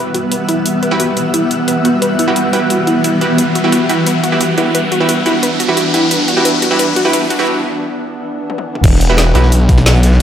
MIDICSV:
0, 0, Header, 1, 8, 480
1, 0, Start_track
1, 0, Key_signature, 1, "minor"
1, 0, Tempo, 340909
1, 924, Time_signature, 4, 2, 24, 8
1, 14390, End_track
2, 0, Start_track
2, 0, Title_t, "Ambient pad"
2, 0, Program_c, 0, 92
2, 0, Note_on_c, 0, 55, 79
2, 0, Note_on_c, 0, 59, 85
2, 0, Note_on_c, 0, 76, 86
2, 0, Note_on_c, 0, 78, 82
2, 10522, Note_off_c, 0, 78, 0
2, 10523, Note_off_c, 0, 55, 0
2, 10523, Note_off_c, 0, 76, 0
2, 10525, Note_off_c, 0, 59, 0
2, 14390, End_track
3, 0, Start_track
3, 0, Title_t, "Synth stab"
3, 0, Program_c, 1, 62
3, 0, Note_on_c, 1, 64, 94
3, 0, Note_on_c, 1, 66, 86
3, 0, Note_on_c, 1, 67, 89
3, 0, Note_on_c, 1, 71, 107
3, 1255, Note_off_c, 1, 64, 0
3, 1255, Note_off_c, 1, 66, 0
3, 1255, Note_off_c, 1, 67, 0
3, 1255, Note_off_c, 1, 71, 0
3, 1283, Note_on_c, 1, 64, 96
3, 1283, Note_on_c, 1, 66, 85
3, 1283, Note_on_c, 1, 67, 86
3, 1283, Note_on_c, 1, 71, 105
3, 1459, Note_off_c, 1, 64, 0
3, 1459, Note_off_c, 1, 66, 0
3, 1459, Note_off_c, 1, 67, 0
3, 1459, Note_off_c, 1, 71, 0
3, 3203, Note_on_c, 1, 64, 90
3, 3203, Note_on_c, 1, 66, 84
3, 3203, Note_on_c, 1, 67, 80
3, 3203, Note_on_c, 1, 71, 94
3, 3313, Note_off_c, 1, 64, 0
3, 3313, Note_off_c, 1, 66, 0
3, 3313, Note_off_c, 1, 67, 0
3, 3313, Note_off_c, 1, 71, 0
3, 3563, Note_on_c, 1, 64, 93
3, 3563, Note_on_c, 1, 66, 86
3, 3563, Note_on_c, 1, 67, 86
3, 3563, Note_on_c, 1, 71, 101
3, 4500, Note_off_c, 1, 64, 0
3, 4500, Note_off_c, 1, 66, 0
3, 4500, Note_off_c, 1, 67, 0
3, 4500, Note_off_c, 1, 71, 0
3, 4523, Note_on_c, 1, 66, 68
3, 4524, Note_on_c, 1, 64, 75
3, 4524, Note_on_c, 1, 67, 69
3, 4524, Note_on_c, 1, 71, 84
3, 4764, Note_off_c, 1, 64, 0
3, 4764, Note_off_c, 1, 66, 0
3, 4764, Note_off_c, 1, 67, 0
3, 4764, Note_off_c, 1, 71, 0
3, 5124, Note_on_c, 1, 64, 87
3, 5124, Note_on_c, 1, 66, 79
3, 5124, Note_on_c, 1, 67, 81
3, 5124, Note_on_c, 1, 71, 97
3, 5299, Note_off_c, 1, 64, 0
3, 5299, Note_off_c, 1, 66, 0
3, 5299, Note_off_c, 1, 67, 0
3, 5299, Note_off_c, 1, 71, 0
3, 5483, Note_on_c, 1, 64, 71
3, 5483, Note_on_c, 1, 66, 66
3, 5483, Note_on_c, 1, 67, 65
3, 5483, Note_on_c, 1, 71, 75
3, 5658, Note_off_c, 1, 64, 0
3, 5659, Note_off_c, 1, 66, 0
3, 5659, Note_off_c, 1, 67, 0
3, 5659, Note_off_c, 1, 71, 0
3, 6083, Note_on_c, 1, 64, 87
3, 6083, Note_on_c, 1, 66, 78
3, 6083, Note_on_c, 1, 67, 82
3, 6083, Note_on_c, 1, 71, 95
3, 6259, Note_off_c, 1, 64, 0
3, 6259, Note_off_c, 1, 66, 0
3, 6259, Note_off_c, 1, 67, 0
3, 6259, Note_off_c, 1, 71, 0
3, 6443, Note_on_c, 1, 66, 67
3, 6443, Note_on_c, 1, 67, 66
3, 6444, Note_on_c, 1, 64, 72
3, 6444, Note_on_c, 1, 71, 80
3, 6619, Note_off_c, 1, 64, 0
3, 6619, Note_off_c, 1, 66, 0
3, 6619, Note_off_c, 1, 67, 0
3, 6619, Note_off_c, 1, 71, 0
3, 7043, Note_on_c, 1, 64, 88
3, 7043, Note_on_c, 1, 66, 85
3, 7043, Note_on_c, 1, 67, 87
3, 7044, Note_on_c, 1, 71, 104
3, 7219, Note_off_c, 1, 64, 0
3, 7219, Note_off_c, 1, 66, 0
3, 7219, Note_off_c, 1, 67, 0
3, 7219, Note_off_c, 1, 71, 0
3, 7403, Note_on_c, 1, 64, 71
3, 7403, Note_on_c, 1, 66, 62
3, 7403, Note_on_c, 1, 67, 67
3, 7403, Note_on_c, 1, 71, 78
3, 7579, Note_off_c, 1, 64, 0
3, 7579, Note_off_c, 1, 66, 0
3, 7579, Note_off_c, 1, 67, 0
3, 7579, Note_off_c, 1, 71, 0
3, 8003, Note_on_c, 1, 64, 88
3, 8003, Note_on_c, 1, 66, 84
3, 8003, Note_on_c, 1, 67, 81
3, 8003, Note_on_c, 1, 71, 100
3, 8179, Note_off_c, 1, 64, 0
3, 8179, Note_off_c, 1, 66, 0
3, 8179, Note_off_c, 1, 67, 0
3, 8179, Note_off_c, 1, 71, 0
3, 8363, Note_on_c, 1, 64, 74
3, 8363, Note_on_c, 1, 66, 66
3, 8363, Note_on_c, 1, 67, 71
3, 8363, Note_on_c, 1, 71, 81
3, 8539, Note_off_c, 1, 64, 0
3, 8539, Note_off_c, 1, 66, 0
3, 8539, Note_off_c, 1, 67, 0
3, 8539, Note_off_c, 1, 71, 0
3, 8962, Note_on_c, 1, 67, 90
3, 8962, Note_on_c, 1, 71, 102
3, 8963, Note_on_c, 1, 64, 94
3, 8963, Note_on_c, 1, 66, 88
3, 9064, Note_off_c, 1, 64, 0
3, 9064, Note_off_c, 1, 66, 0
3, 9064, Note_off_c, 1, 67, 0
3, 9064, Note_off_c, 1, 71, 0
3, 9443, Note_on_c, 1, 64, 92
3, 9443, Note_on_c, 1, 66, 86
3, 9443, Note_on_c, 1, 67, 86
3, 9443, Note_on_c, 1, 71, 105
3, 9545, Note_off_c, 1, 64, 0
3, 9545, Note_off_c, 1, 66, 0
3, 9545, Note_off_c, 1, 67, 0
3, 9545, Note_off_c, 1, 71, 0
3, 9923, Note_on_c, 1, 64, 98
3, 9923, Note_on_c, 1, 66, 86
3, 9923, Note_on_c, 1, 67, 88
3, 9923, Note_on_c, 1, 71, 106
3, 10024, Note_off_c, 1, 64, 0
3, 10024, Note_off_c, 1, 66, 0
3, 10025, Note_off_c, 1, 67, 0
3, 10025, Note_off_c, 1, 71, 0
3, 10403, Note_on_c, 1, 64, 96
3, 10403, Note_on_c, 1, 66, 85
3, 10403, Note_on_c, 1, 67, 90
3, 10403, Note_on_c, 1, 71, 102
3, 10504, Note_off_c, 1, 64, 0
3, 10504, Note_off_c, 1, 66, 0
3, 10504, Note_off_c, 1, 67, 0
3, 10504, Note_off_c, 1, 71, 0
3, 12804, Note_on_c, 1, 64, 96
3, 12804, Note_on_c, 1, 66, 88
3, 12804, Note_on_c, 1, 67, 90
3, 12804, Note_on_c, 1, 71, 109
3, 12979, Note_off_c, 1, 64, 0
3, 12979, Note_off_c, 1, 66, 0
3, 12979, Note_off_c, 1, 67, 0
3, 12979, Note_off_c, 1, 71, 0
3, 13164, Note_on_c, 1, 64, 76
3, 13164, Note_on_c, 1, 66, 71
3, 13164, Note_on_c, 1, 67, 70
3, 13164, Note_on_c, 1, 71, 86
3, 13339, Note_off_c, 1, 64, 0
3, 13339, Note_off_c, 1, 66, 0
3, 13339, Note_off_c, 1, 67, 0
3, 13339, Note_off_c, 1, 71, 0
3, 14390, End_track
4, 0, Start_track
4, 0, Title_t, "Synth arpeggio sound"
4, 0, Program_c, 2, 84
4, 203, Note_on_c, 2, 66, 76
4, 336, Note_off_c, 2, 66, 0
4, 444, Note_on_c, 2, 71, 75
4, 642, Note_off_c, 2, 71, 0
4, 684, Note_on_c, 2, 64, 77
4, 882, Note_off_c, 2, 64, 0
4, 1164, Note_on_c, 2, 71, 76
4, 1243, Note_off_c, 2, 71, 0
4, 1404, Note_on_c, 2, 66, 78
4, 1536, Note_off_c, 2, 66, 0
4, 1644, Note_on_c, 2, 71, 80
4, 1842, Note_off_c, 2, 71, 0
4, 1884, Note_on_c, 2, 64, 87
4, 2082, Note_off_c, 2, 64, 0
4, 2364, Note_on_c, 2, 71, 75
4, 2443, Note_off_c, 2, 71, 0
4, 2604, Note_on_c, 2, 66, 81
4, 2736, Note_off_c, 2, 66, 0
4, 2844, Note_on_c, 2, 71, 83
4, 3042, Note_off_c, 2, 71, 0
4, 3084, Note_on_c, 2, 64, 78
4, 3282, Note_off_c, 2, 64, 0
4, 3564, Note_on_c, 2, 71, 75
4, 3643, Note_off_c, 2, 71, 0
4, 3804, Note_on_c, 2, 66, 87
4, 3936, Note_off_c, 2, 66, 0
4, 4044, Note_on_c, 2, 64, 74
4, 4242, Note_off_c, 2, 64, 0
4, 4284, Note_on_c, 2, 64, 104
4, 4416, Note_off_c, 2, 64, 0
4, 4764, Note_on_c, 2, 71, 77
4, 4843, Note_off_c, 2, 71, 0
4, 5004, Note_on_c, 2, 66, 73
4, 5136, Note_off_c, 2, 66, 0
4, 5244, Note_on_c, 2, 66, 71
4, 5442, Note_off_c, 2, 66, 0
4, 5484, Note_on_c, 2, 64, 72
4, 5682, Note_off_c, 2, 64, 0
4, 5724, Note_on_c, 2, 71, 79
4, 5803, Note_off_c, 2, 71, 0
4, 5963, Note_on_c, 2, 66, 75
4, 6096, Note_off_c, 2, 66, 0
4, 6204, Note_on_c, 2, 66, 70
4, 6402, Note_off_c, 2, 66, 0
4, 6444, Note_on_c, 2, 64, 75
4, 6642, Note_off_c, 2, 64, 0
4, 6684, Note_on_c, 2, 71, 82
4, 6763, Note_off_c, 2, 71, 0
4, 6924, Note_on_c, 2, 66, 78
4, 7056, Note_off_c, 2, 66, 0
4, 7164, Note_on_c, 2, 66, 75
4, 7362, Note_off_c, 2, 66, 0
4, 7405, Note_on_c, 2, 64, 76
4, 7602, Note_off_c, 2, 64, 0
4, 7643, Note_on_c, 2, 71, 80
4, 7723, Note_off_c, 2, 71, 0
4, 7884, Note_on_c, 2, 66, 77
4, 8016, Note_off_c, 2, 66, 0
4, 8124, Note_on_c, 2, 66, 74
4, 8322, Note_off_c, 2, 66, 0
4, 8363, Note_on_c, 2, 64, 78
4, 8561, Note_off_c, 2, 64, 0
4, 8604, Note_on_c, 2, 71, 84
4, 8683, Note_off_c, 2, 71, 0
4, 8843, Note_on_c, 2, 66, 74
4, 8976, Note_off_c, 2, 66, 0
4, 9084, Note_on_c, 2, 71, 80
4, 9163, Note_off_c, 2, 71, 0
4, 9324, Note_on_c, 2, 66, 78
4, 9456, Note_off_c, 2, 66, 0
4, 9564, Note_on_c, 2, 71, 87
4, 9643, Note_off_c, 2, 71, 0
4, 9804, Note_on_c, 2, 66, 80
4, 9936, Note_off_c, 2, 66, 0
4, 10044, Note_on_c, 2, 71, 86
4, 10123, Note_off_c, 2, 71, 0
4, 10284, Note_on_c, 2, 66, 78
4, 10416, Note_off_c, 2, 66, 0
4, 14390, End_track
5, 0, Start_track
5, 0, Title_t, "Synth drone"
5, 0, Program_c, 3, 95
5, 0, Note_on_c, 3, 52, 74
5, 0, Note_on_c, 3, 59, 73
5, 0, Note_on_c, 3, 78, 89
5, 4732, Note_off_c, 3, 78, 0
5, 4763, Note_on_c, 3, 62, 89
5, 12388, Note_off_c, 3, 52, 0
5, 12388, Note_off_c, 3, 59, 0
5, 12412, Note_off_c, 3, 62, 0
5, 12444, Note_on_c, 3, 52, 78
5, 12444, Note_on_c, 3, 59, 72
5, 12444, Note_on_c, 3, 78, 86
5, 14390, Note_off_c, 3, 52, 0
5, 14390, Note_off_c, 3, 59, 0
5, 14390, Note_off_c, 3, 78, 0
5, 14390, End_track
6, 0, Start_track
6, 0, Title_t, "Detuned saw bass"
6, 0, Program_c, 4, 39
6, 12445, Note_on_c, 4, 28, 99
6, 13145, Note_off_c, 4, 28, 0
6, 13164, Note_on_c, 4, 35, 92
6, 14345, Note_off_c, 4, 35, 0
6, 14390, End_track
7, 0, Start_track
7, 0, Title_t, "Riser"
7, 0, Program_c, 5, 103
7, 0, Note_on_c, 5, 60, 78
7, 10524, Note_off_c, 5, 60, 0
7, 14390, End_track
8, 0, Start_track
8, 0, Title_t, "Drums"
8, 204, Note_on_c, 9, 42, 65
8, 345, Note_off_c, 9, 42, 0
8, 444, Note_on_c, 9, 42, 86
8, 585, Note_off_c, 9, 42, 0
8, 684, Note_on_c, 9, 42, 66
8, 825, Note_off_c, 9, 42, 0
8, 924, Note_on_c, 9, 42, 88
8, 1065, Note_off_c, 9, 42, 0
8, 1164, Note_on_c, 9, 42, 64
8, 1305, Note_off_c, 9, 42, 0
8, 1404, Note_on_c, 9, 42, 90
8, 1545, Note_off_c, 9, 42, 0
8, 1644, Note_on_c, 9, 42, 64
8, 1785, Note_off_c, 9, 42, 0
8, 1884, Note_on_c, 9, 42, 90
8, 2025, Note_off_c, 9, 42, 0
8, 2124, Note_on_c, 9, 42, 64
8, 2265, Note_off_c, 9, 42, 0
8, 2363, Note_on_c, 9, 42, 88
8, 2504, Note_off_c, 9, 42, 0
8, 2604, Note_on_c, 9, 42, 67
8, 2745, Note_off_c, 9, 42, 0
8, 2844, Note_on_c, 9, 42, 86
8, 2985, Note_off_c, 9, 42, 0
8, 3084, Note_on_c, 9, 42, 64
8, 3225, Note_off_c, 9, 42, 0
8, 3324, Note_on_c, 9, 42, 88
8, 3465, Note_off_c, 9, 42, 0
8, 3564, Note_on_c, 9, 42, 62
8, 3705, Note_off_c, 9, 42, 0
8, 3804, Note_on_c, 9, 42, 89
8, 3945, Note_off_c, 9, 42, 0
8, 4044, Note_on_c, 9, 42, 61
8, 4185, Note_off_c, 9, 42, 0
8, 4284, Note_on_c, 9, 42, 89
8, 4425, Note_off_c, 9, 42, 0
8, 4524, Note_on_c, 9, 42, 62
8, 4665, Note_off_c, 9, 42, 0
8, 4764, Note_on_c, 9, 42, 86
8, 4905, Note_off_c, 9, 42, 0
8, 5004, Note_on_c, 9, 42, 65
8, 5144, Note_off_c, 9, 42, 0
8, 5244, Note_on_c, 9, 42, 88
8, 5384, Note_off_c, 9, 42, 0
8, 5484, Note_on_c, 9, 42, 64
8, 5624, Note_off_c, 9, 42, 0
8, 5724, Note_on_c, 9, 42, 88
8, 5864, Note_off_c, 9, 42, 0
8, 5964, Note_on_c, 9, 42, 65
8, 6105, Note_off_c, 9, 42, 0
8, 6203, Note_on_c, 9, 42, 83
8, 6344, Note_off_c, 9, 42, 0
8, 6444, Note_on_c, 9, 42, 64
8, 6585, Note_off_c, 9, 42, 0
8, 6684, Note_on_c, 9, 42, 91
8, 6824, Note_off_c, 9, 42, 0
8, 6924, Note_on_c, 9, 42, 65
8, 7065, Note_off_c, 9, 42, 0
8, 7164, Note_on_c, 9, 42, 95
8, 7305, Note_off_c, 9, 42, 0
8, 7405, Note_on_c, 9, 42, 63
8, 7545, Note_off_c, 9, 42, 0
8, 7644, Note_on_c, 9, 42, 91
8, 7785, Note_off_c, 9, 42, 0
8, 7884, Note_on_c, 9, 42, 65
8, 8025, Note_off_c, 9, 42, 0
8, 8124, Note_on_c, 9, 42, 90
8, 8265, Note_off_c, 9, 42, 0
8, 8364, Note_on_c, 9, 42, 64
8, 8505, Note_off_c, 9, 42, 0
8, 8604, Note_on_c, 9, 42, 97
8, 8745, Note_off_c, 9, 42, 0
8, 8844, Note_on_c, 9, 42, 69
8, 8984, Note_off_c, 9, 42, 0
8, 9084, Note_on_c, 9, 42, 98
8, 9225, Note_off_c, 9, 42, 0
8, 9324, Note_on_c, 9, 42, 71
8, 9465, Note_off_c, 9, 42, 0
8, 9564, Note_on_c, 9, 42, 96
8, 9705, Note_off_c, 9, 42, 0
8, 9804, Note_on_c, 9, 42, 67
8, 9945, Note_off_c, 9, 42, 0
8, 10044, Note_on_c, 9, 42, 92
8, 10185, Note_off_c, 9, 42, 0
8, 10284, Note_on_c, 9, 42, 68
8, 10425, Note_off_c, 9, 42, 0
8, 11965, Note_on_c, 9, 48, 63
8, 12085, Note_off_c, 9, 48, 0
8, 12085, Note_on_c, 9, 48, 66
8, 12226, Note_off_c, 9, 48, 0
8, 12325, Note_on_c, 9, 45, 84
8, 12442, Note_on_c, 9, 42, 88
8, 12444, Note_on_c, 9, 36, 125
8, 12445, Note_off_c, 9, 42, 0
8, 12445, Note_on_c, 9, 42, 98
8, 12445, Note_on_c, 9, 49, 105
8, 12466, Note_off_c, 9, 45, 0
8, 12577, Note_on_c, 9, 38, 53
8, 12585, Note_off_c, 9, 36, 0
8, 12586, Note_off_c, 9, 42, 0
8, 12586, Note_off_c, 9, 49, 0
8, 12685, Note_on_c, 9, 42, 70
8, 12690, Note_off_c, 9, 42, 0
8, 12690, Note_on_c, 9, 42, 68
8, 12718, Note_off_c, 9, 38, 0
8, 12831, Note_off_c, 9, 42, 0
8, 12914, Note_on_c, 9, 38, 123
8, 12925, Note_off_c, 9, 38, 0
8, 12925, Note_on_c, 9, 38, 122
8, 12925, Note_on_c, 9, 42, 99
8, 12927, Note_off_c, 9, 42, 0
8, 12927, Note_on_c, 9, 42, 94
8, 13066, Note_off_c, 9, 38, 0
8, 13068, Note_off_c, 9, 42, 0
8, 13162, Note_on_c, 9, 42, 68
8, 13165, Note_off_c, 9, 42, 0
8, 13165, Note_on_c, 9, 42, 68
8, 13275, Note_on_c, 9, 38, 44
8, 13306, Note_off_c, 9, 42, 0
8, 13403, Note_on_c, 9, 42, 94
8, 13405, Note_off_c, 9, 42, 0
8, 13405, Note_on_c, 9, 42, 103
8, 13416, Note_off_c, 9, 38, 0
8, 13546, Note_off_c, 9, 42, 0
8, 13645, Note_on_c, 9, 36, 109
8, 13645, Note_on_c, 9, 42, 63
8, 13763, Note_off_c, 9, 42, 0
8, 13763, Note_on_c, 9, 42, 47
8, 13765, Note_on_c, 9, 40, 35
8, 13785, Note_off_c, 9, 36, 0
8, 13885, Note_off_c, 9, 42, 0
8, 13885, Note_on_c, 9, 38, 123
8, 13885, Note_on_c, 9, 42, 96
8, 13888, Note_off_c, 9, 38, 0
8, 13888, Note_on_c, 9, 38, 112
8, 13894, Note_off_c, 9, 42, 0
8, 13894, Note_on_c, 9, 42, 86
8, 13906, Note_off_c, 9, 40, 0
8, 14006, Note_off_c, 9, 42, 0
8, 14006, Note_on_c, 9, 42, 44
8, 14029, Note_off_c, 9, 38, 0
8, 14123, Note_off_c, 9, 42, 0
8, 14123, Note_on_c, 9, 42, 67
8, 14125, Note_off_c, 9, 42, 0
8, 14125, Note_on_c, 9, 38, 63
8, 14125, Note_on_c, 9, 42, 70
8, 14244, Note_off_c, 9, 38, 0
8, 14244, Note_on_c, 9, 38, 46
8, 14266, Note_off_c, 9, 42, 0
8, 14385, Note_off_c, 9, 38, 0
8, 14390, End_track
0, 0, End_of_file